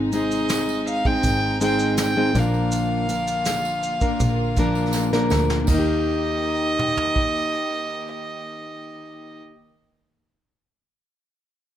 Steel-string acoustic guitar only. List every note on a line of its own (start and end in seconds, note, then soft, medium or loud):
0.00 0.12 G#2 medium
0.00 0.12 D#3 medium
0.00 0.12 G#3 loud
0.00 0.12 C4 medium
0.00 0.13 D#4 medium
0.00 0.13 G#4 medium
0.13 1.05 G#3 medium
0.13 1.05 C4 medium
0.13 1.05 D#4 medium
0.13 1.04 G#4 medium
1.05 1.60 G#3 medium
1.05 1.60 C4 soft
1.05 1.60 D#4 medium
1.05 1.61 G#4 medium
1.60 2.16 G#2 medium
1.60 2.16 D#3 medium
1.60 2.16 G#3 medium
1.60 2.16 C4 medium
1.60 2.16 D#4 medium
1.60 2.16 G#4 loud
2.17 2.36 G#2 medium
2.17 2.35 D#3 medium
2.17 2.35 G#3 medium
2.17 2.35 C4 medium
2.17 2.35 D#4 medium
2.17 2.35 G#4 medium
2.35 3.09 A#2 medium
2.35 3.07 F3 medium
2.35 3.09 A#3 medium
2.35 3.09 D4 medium
2.35 3.10 A#4 medium
3.08 4.01 F3 medium
3.08 4.03 A#3 medium
3.08 4.01 D4 medium
3.08 4.01 A#4 medium
4.02 4.57 A#3 medium
4.02 4.57 D4 medium
4.02 4.57 A#4 medium
4.58 5.13 A#2 medium
4.58 5.13 F3 medium
4.58 5.13 A#3 medium
4.58 5.12 D4 loud
4.58 5.12 A#4 medium
5.13 5.69 A#2 medium
5.13 5.64 F3 medium
5.13 5.68 A#3 medium
5.13 5.68 D4 medium
5.13 5.68 A#4 medium
5.65 9.41 D#3 medium
5.70 9.47 A#3 medium
5.74 9.51 D#4 medium
5.79 9.55 G4 medium